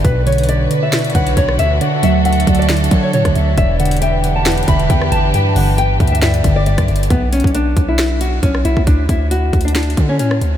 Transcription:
0.05 808-style bass B1, synth keys B2, string section D3 D4 F#4 B4, soft synth lead B4, nylon-string guitar B4, kick, closed hi-hat
0.27 synth keys D3, nylon-string guitar C#5, closed hi-hat
0.32 closed hi-hat
0.38 closed hi-hat
0.43 closed hi-hat
0.49 soft synth lead C#5, nylon-string guitar D5, closed hi-hat
0.70 synth keys D3, soft synth lead D5, closed hi-hat
0.83 nylon-string guitar E5
0.93 synth keys B2, snare, closed hi-hat
0.99 closed hi-hat
1.04 closed hi-hat
1.10 closed hi-hat
1.15 808-style bass B1, synth keys D3, soft synth lead C#5, nylon-string guitar F#5, kick, closed hi-hat
1.27 closed hi-hat
1.37 808-style bass B1, synth keys B2, nylon-string guitar C#5, kick, closed hi-hat
1.49 cross-stick
1.59 808-style bass D2, soft synth lead E5, nylon-string guitar E5, closed hi-hat
1.81 synth keys D3, string section A4, nylon-string guitar D5, soft synth lead F#5, closed hi-hat
2.03 808-style bass D2, synth keys F#3, nylon-string guitar E5, closed hi-hat
2.25 soft synth lead E5, nylon-string guitar F#5, closed hi-hat
2.33 closed hi-hat
2.40 closed hi-hat
2.47 808-style bass D2, synth keys F#3, soft synth lead D5, kick, closed hi-hat
2.55 closed hi-hat
2.59 nylon-string guitar D5, closed hi-hat
2.69 synth keys D3, nylon-string guitar D5, snare, closed hi-hat
2.77 closed hi-hat
2.84 closed hi-hat
2.91 808-style bass D3, synth keys F#3, soft synth lead C#5, kick, closed hi-hat
3.03 nylon-string guitar C#5
3.13 808-style bass A2, synth keys D3, nylon-string guitar C#5, closed hi-hat
3.25 808-style bass D2, kick, cross-stick, closed hi-hat
3.35 808-style bass D2, soft synth lead E5, closed hi-hat
3.57 808-style bass E1, synth keys E2, string section E3 D4 G4 B4, soft synth lead D5, nylon-string guitar E5, kick, closed hi-hat
3.79 synth keys D3, nylon-string guitar F#5, closed hi-hat
3.85 closed hi-hat
3.91 closed hi-hat
3.97 closed hi-hat
4.02 soft synth lead E5, nylon-string guitar G5, closed hi-hat
4.24 synth keys D3, soft synth lead F#5, closed hi-hat
4.36 nylon-string guitar A5
4.46 synth keys E2, snare, closed hi-hat
4.52 closed hi-hat
4.58 closed hi-hat
4.63 closed hi-hat
4.68 808-style bass E1, synth keys D3, soft synth lead E5, nylon-string guitar B5, kick, closed hi-hat
4.79 closed hi-hat
4.90 808-style bass E2, synth keys E2, nylon-string guitar G5, kick, closed hi-hat
5.02 cross-stick
5.11 808-style bass G1, soft synth lead G5, nylon-string guitar A5, closed hi-hat
5.34 synth keys G2, nylon-string guitar G5, soft synth lead A5, closed hi-hat
5.56 808-style bass G1, synth keys D3, nylon-string guitar F#5, open hi-hat
5.78 nylon-string guitar G5, soft synth lead G5, closed hi-hat
6.00 808-style bass D2, synth keys D3, soft synth lead E5, kick, closed hi-hat
6.08 closed hi-hat
6.12 nylon-string guitar E5, closed hi-hat
6.22 synth keys G2, soft synth lead D5, nylon-string guitar E5, snare, closed hi-hat
6.34 closed hi-hat
6.44 808-style bass G1, synth keys D3, kick, closed hi-hat
6.56 nylon-string guitar D5
6.66 synth keys G2, nylon-string guitar D5, closed hi-hat
6.78 808-style bass B1, kick, cross-stick, closed hi-hat
6.88 808-style bass G1, closed hi-hat
6.96 closed hi-hat
7.03 closed hi-hat
7.10 808-style bass B1, nylon-string guitar B3, kick, closed hi-hat
7.33 nylon-string guitar C#4, closed hi-hat
7.40 closed hi-hat
7.44 808-style bass B1, kick, closed hi-hat
7.55 nylon-string guitar D4, closed hi-hat
7.77 808-style bass B1, kick, closed hi-hat
7.88 nylon-string guitar E4
7.99 snare, closed hi-hat
8.21 nylon-string guitar F#4, closed hi-hat
8.43 808-style bass B1, nylon-string guitar C#4, kick, closed hi-hat
8.55 cross-stick
8.65 808-style bass B1, nylon-string guitar E4, closed hi-hat
8.77 808-style bass D2, kick
8.87 nylon-string guitar D4, kick, closed hi-hat
9.09 808-style bass D2, nylon-string guitar E4, kick, closed hi-hat
9.31 nylon-string guitar F#4, closed hi-hat
9.53 808-style bass D2, kick, closed hi-hat
9.61 closed hi-hat
9.65 nylon-string guitar D4, closed hi-hat
9.75 nylon-string guitar D4, snare, closed hi-hat
9.83 closed hi-hat
9.90 closed hi-hat
9.97 808-style bass D3, kick, closed hi-hat
10.09 nylon-string guitar C#4
10.19 808-style bass A2, nylon-string guitar C#4, closed hi-hat
10.31 cross-stick
10.41 808-style bass D2, closed hi-hat

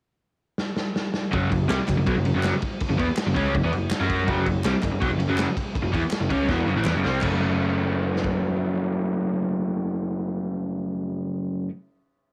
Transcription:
0.58 snare
0.77 snare
0.96 snare
1.14 snare
1.31 picked electric bass F#1, overdriven electric guitar F#2 C#3 F#3, kick, ride
1.51 picked electric bass F#1, overdriven electric guitar F#2 C#3, kick, ride
1.68 picked electric bass C2, overdriven electric guitar C3 G3, snare, clap, ride
1.79 muted overdriven electric guitar stroke, muted picked electric bass stroke
1.88 picked electric bass F#1, overdriven electric guitar F#2 C#3, kick, clap, ride
1.97 picked electric bass F#1, overdriven electric guitar F#2 C#3
2.06 picked electric bass B1, overdriven electric guitar B2 F#3, kick, ride
2.16 picked electric bass F#1, overdriven electric guitar F#2 C#3
2.25 picked electric bass F#1, overdriven electric guitar F#2 C#3, ride
2.34 picked electric bass F#1, overdriven electric guitar F#2 C#3 F#3
2.43 snare, clap, ride
2.62 kick, ride
2.80 kick, ride
2.90 picked electric bass F#1, overdriven electric guitar F#2 C#3
2.98 picked electric bass E2, overdriven electric guitar E3 B3, kick, ride
3.08 muted overdriven electric guitar stroke, muted picked electric bass stroke
3.17 snare, clap, ride
3.26 picked electric bass F#1, overdriven electric guitar F#2 C#3
3.35 picked electric bass C#2, overdriven electric guitar C#3 G#3 C#4, kick, ride
3.54 picked electric bass F#1, overdriven electric guitar F#2 C#3, kick, ride
3.63 picked electric bass E2, overdriven electric guitar E3 B3
3.73 picked electric bass F#1, overdriven electric guitar F#2 C#3, ride
3.90 snare, clap, ride
4.00 picked electric bass F#2, overdriven electric guitar F#3 C#4 F#4
4.10 kick, ride
4.27 picked electric bass F#1, overdriven electric guitar F#2 C#3 F#3, kick, ride
4.46 picked electric bass F#1, overdriven electric guitar F#2 C#3, kick, ride
4.64 picked electric bass C2, overdriven electric guitar C3 G3, snare, clap, ride
4.73 muted overdriven electric guitar stroke, muted picked electric bass stroke
4.82 picked electric bass F#1, overdriven electric guitar F#2 C#3, kick, clap, ride
4.91 picked electric bass F#1, overdriven electric guitar F#2 C#3
5.00 picked electric bass B1, overdriven electric guitar B2 F#3, kick, ride
5.09 picked electric bass F#1, overdriven electric guitar F#2 C#3
5.18 picked electric bass F#1, overdriven electric guitar F#2 C#3, ride
5.28 picked electric bass F#1, overdriven electric guitar F#2 C#3 F#3
5.38 snare, clap, ride
5.57 kick, ride
5.75 kick, ride
5.82 picked electric bass F#1, overdriven electric guitar F#2 C#3
5.92 picked electric bass E2, overdriven electric guitar E3 B3, kick, ride
6.02 muted overdriven electric guitar stroke, muted picked electric bass stroke
6.11 snare, clap, ride
6.20 picked electric bass F#1, overdriven electric guitar F#2 C#3
6.29 picked electric bass C#2, overdriven electric guitar C#3 G#3 C#4, kick, ride
6.47 picked electric bass E1, overdriven electric guitar E2 B2 E3, kick, snare
6.66 picked electric bass F#1, overdriven electric guitar F#2 C#3
6.75 picked electric bass A1, overdriven electric guitar A2 E3
6.84 picked electric bass E2, overdriven electric guitar E3 B3, snare, clap
6.94 picked electric bass F#1, overdriven electric guitar F#2 C#3
7.04 picked electric bass C2, overdriven electric guitar C3 G3 C4, snare
7.21 picked electric bass F#1, overdriven electric guitar F#2 C#3 F#3 A3 C#4, kick, clap, crash
8.16 snare
8.24 kick

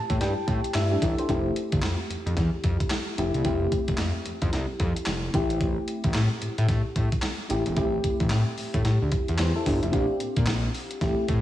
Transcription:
Already playing: fm electric piano A3 C4 E4 G4 A5
0.10 analog synth bass A2, kick, closed hi-hat
0.21 analog synth bass G2, fm electric piano G5, snare, closed hi-hat
0.48 analog synth bass A2, kick, closed hi-hat
0.64 closed hi-hat
0.74 analog synth bass G2, fm electric piano A3 E4 E5, snare, clap, closed hi-hat
0.91 fm electric piano D4 G4
1.02 analog synth bass A1, fm electric piano E4 A4, kick, closed hi-hat
1.18 fm electric piano G4 C5, closed hi-hat
1.29 analog synth bass F1, fm electric piano A3 C4 E4 G4, kick, closed hi-hat
1.56 closed hi-hat
1.72 analog synth bass G1, kick, closed hi-hat
1.82 analog synth bass F2, snare, clap, closed hi-hat
2.10 analog synth bass F2, closed hi-hat
2.26 analog synth bass F2, closed hi-hat
2.37 analog synth bass E2, kick, snare, closed hi-hat
2.64 analog synth bass F2, kick, closed hi-hat
2.80 kick, closed hi-hat
2.90 snare, clap, closed hi-hat
3.18 analog synth bass F1, fm electric piano A3 C4 E4 G4, closed hi-hat
3.34 analog synth bass C2, closed hi-hat
3.44 analog synth bass F1, fm electric piano A3 C4 E4 G4, kick, closed hi-hat
3.72 kick, closed hi-hat
3.88 analog synth bass F1, kick, closed hi-hat
3.97 analog synth bass F2, snare, clap, closed hi-hat
4.26 analog synth bass F2, closed hi-hat
4.42 analog synth bass F2, kick, closed hi-hat
4.53 analog synth bass C2, snare, closed hi-hat
4.80 analog synth bass F2, kick, closed hi-hat
4.96 closed hi-hat
5.06 analog synth bass F1, snare, clap, closed hi-hat
5.34 analog synth bass A1, fm electric piano A3 C4 E4 G4, kick, closed hi-hat
5.50 closed hi-hat
5.61 kick, closed hi-hat
5.88 closed hi-hat
6.04 analog synth bass A1, kick, closed hi-hat
6.14 analog synth bass A2, snare, clap, closed hi-hat
6.42 analog synth bass A2, closed hi-hat
6.58 analog synth bass A2, closed hi-hat
6.68 analog synth bass A2, kick, snare, closed hi-hat
6.96 analog synth bass A2, kick, closed hi-hat
7.12 kick, closed hi-hat
7.22 snare, clap, closed hi-hat
7.49 analog synth bass A1, fm electric piano A3 C4 E4 G4, closed hi-hat
7.66 analog synth bass E1, closed hi-hat
7.76 analog synth bass A1, fm electric piano A3 C4 E4 G4, kick, closed hi-hat
8.04 kick, closed hi-hat
8.20 analog synth bass A1, kick, closed hi-hat
8.30 analog synth bass A2, snare, clap, closed hi-hat
8.58 analog synth bass A2, open hi-hat
8.74 analog synth bass A2, kick, closed hi-hat
8.85 analog synth bass A2, snare, closed hi-hat
9.02 analog synth bass D2
9.12 kick, closed hi-hat
9.28 analog synth bass E2, closed hi-hat
9.38 analog synth bass E2, fm electric piano G4 C5, snare, clap, closed hi-hat
9.56 fm electric piano E4 A4
9.66 analog synth bass G1, fm electric piano D4 G4, kick, open hi-hat
9.82 analog synth bass F1, fm electric piano A3 E4, closed hi-hat
9.92 analog synth bass A#1, fm electric piano C4 D4 F4 G4, kick, closed hi-hat
10.20 analog synth bass A#2, closed hi-hat
10.36 analog synth bass A#2, kick, closed hi-hat
10.46 analog synth bass A#1, snare, clap, closed hi-hat
10.75 open hi-hat
10.91 closed hi-hat
11.01 analog synth bass A1, fm electric piano A3 C4 E4 G4, kick, snare, closed hi-hat
11.28 analog synth bass A2, kick, closed hi-hat

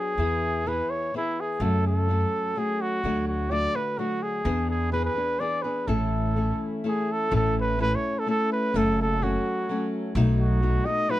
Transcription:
Already playing: nylon-string guitar F#3 B3 D4 F#4, trumpet G#4
0.18 upright bass E2, nylon-string guitar E3 B3 E4 G#4
0.66 nylon-string guitar E3 B3 E4 G#4, trumpet B4
0.90 trumpet C#5
1.14 nylon-string guitar E3 B3 E4 G#4, trumpet E4
1.41 trumpet G#4
1.59 upright bass F#2, nylon-string guitar F#2 C#3 F#3 A3 C#4 F#4, brass ensemble F#3 C#4 A4, trumpet A4
1.87 trumpet A4
2.08 nylon-string guitar F#3 A3 C#4 F#4
2.55 nylon-string guitar F#3 A3 C#4 F#4, trumpet G#4
2.82 trumpet F#4
3.02 upright bass D2, brass ensemble D3 A3 F#4, nylon-string guitar D3 F#3 A3 D4 F#4
3.28 trumpet F#4
3.50 nylon-string guitar F#3 A3 D4 F#4, trumpet D5
3.75 nylon-string guitar A3 D4 F#4, trumpet B4
3.98 nylon-string guitar F#3 A3 D4 F#4, trumpet F#4
4.23 trumpet G#4
4.43 upright bass E2, brass ensemble E3 D4 G#4, nylon-string guitar E3 B3 D4 G#4
4.71 trumpet G#4
4.93 nylon-string guitar E3 B3 D4 G#4, trumpet B4
5.05 trumpet B4
5.15 nylon-string guitar B3 D4 G#4
5.40 nylon-string guitar E3 B3 D4 G#4, trumpet D5
5.62 nylon-string guitar B3 D4 G#4, trumpet B4
5.85 upright bass A1, nylon-string guitar A2 E3 A3 C#4 E4 A4, brass ensemble A3 C#4 E4, trumpet A4
6.36 nylon-string guitar A3 C#4 E4 A4
6.84 nylon-string guitar A3 C#4 E4 A4
6.88 trumpet G#4
7.12 trumpet A4
7.29 upright bass A1, nylon-string guitar A2 E3 A3 C#4 E4 A4, brass ensemble A3 C#4 E4
7.36 trumpet A4
7.61 trumpet B4
7.79 nylon-string guitar A3 C#4 E4 A4, trumpet B4
7.95 trumpet C#5
8.19 trumpet A4
8.26 nylon-string guitar A3 C#4 E4 A4, trumpet A4
8.53 trumpet B4
8.72 upright bass F#1, nylon-string guitar F#2 C#3 F#3 A3 C#4, brass ensemble F#3 A4
8.76 nylon-string guitar F#4, trumpet A4
9.02 trumpet A4
9.22 nylon-string guitar F#3 A3 C#4 F#4, trumpet F#4
9.69 nylon-string guitar F#3 A3 C#4 F#4
10.12 upright bass B1, nylon-string guitar B2 F#3 A3, brass ensemble A3 B3 D#4
10.17 nylon-string guitar D#4 F#4
10.40 trumpet F#4
10.62 nylon-string guitar F#3 A3 D#4 F#4
10.85 nylon-string guitar A3 D#4 F#4, trumpet D#5
11.09 nylon-string guitar F#3 A3 D#4 F#4, trumpet B4

